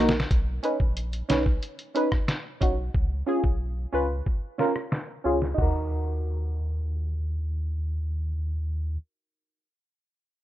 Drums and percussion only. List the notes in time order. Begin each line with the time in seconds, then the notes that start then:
0.09 snare
0.20 snare
0.31 kick, closed hi-hat
0.64 closed hi-hat
0.80 kick
0.97 closed hi-hat
1.13 closed hi-hat
1.30 snare, closed hi-hat
1.46 kick
1.63 closed hi-hat
1.79 closed hi-hat
1.96 closed hi-hat
2.12 kick, cross-stick
2.28 snare, closed hi-hat
2.61 kick, closed hi-hat
2.94 kick
3.44 kick
4.26 kick
4.59 snare
4.76 cross-stick
4.92 snare
5.42 snare
5.58 kick, floor tom, crash